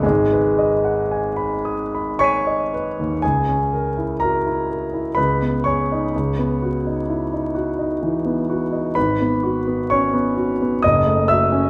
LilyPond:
\new Staff \with { instrumentName = "Grand piano" } { \time 3/4 \key cis \minor \tempo 4 = 63 << { gis2 <cis'' cis''' b''' dis''''>4 | <gis' gis''>4 <ais' ais''>4 <b' b''>8 <cis'' cis'''>8~ | <cis'' cis'''>4. r4. | <b' b''>4 <cis'' cis'''>4 <dis'' dis'''>8 <e'' e'''>8 | } \\ { gis,,16 b'16 dis''16 fis''16 gis''16 b''16 dis'''16 b''16 gis''16 dis''16 b'16 dis,16 | cis,16 cis'16 ais'16 e'16 fis'16 e'16 ais'16 e'16 cis,16 b16 gis'16 dis'16 | cis,16 b16 fis'16 dis'16 e'16 dis'16 fis'16 dis'16 e16 b16 fis'16 dis'16 | gis,,16 b16 fis'16 b16 cis'16 b16 fis'16 b16 fis,,16 a16 fis'16 cis'16 | } >> }